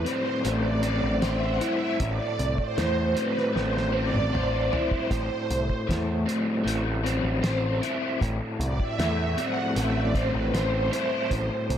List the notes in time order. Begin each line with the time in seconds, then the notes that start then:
Already playing: A2 A3 E4 C5
0.05 C4 C5, closed hi-hat
0.44 A1 A3 D5, closed hi-hat
0.83 C4, closed hi-hat
1.03 A1
1.22 A1 C5 E5, snare, closed hi-hat
1.43 F#5
1.61 E4 E5, closed hi-hat
2.00 A1 A2 D5, kick, closed hi-hat
2.39 C2, closed hi-hat
2.58 C5, kick
2.77 E2 A3, snare, closed hi-hat
3.15 C4 B4, closed hi-hat
3.38 snare
3.53 A1 A3 C5, snare
3.77 snare
3.92 C4 D5
4.13 A1, mid tom
4.33 A1 C5, mid tom
4.71 E4 C5, floor tom
4.91 kick
5.10 A1 A2, kick, closed hi-hat
5.50 C2, closed hi-hat
5.70 kick
5.87 E2 A3, kick, snare, closed hi-hat
6.26 C4, closed hi-hat
6.65 A1 A3, closed hi-hat
7.04 C4, closed hi-hat
7.24 A1
7.43 A1 C5, snare, closed hi-hat
7.81 E4, closed hi-hat
8.20 A1 A2, kick, closed hi-hat
8.59 C2 D5, closed hi-hat
8.80 E5, kick
8.99 E2 A3, snare, closed hi-hat
9.37 C4 F#5, closed hi-hat
9.76 A1 A3 E5, closed hi-hat
9.95 D5
10.15 C4 C5, kick, closed hi-hat
10.32 A1 B4
10.53 A1 C5, snare, closed hi-hat
10.92 E4, closed hi-hat
11.31 A1 A2, kick, closed hi-hat
11.69 C2, closed hi-hat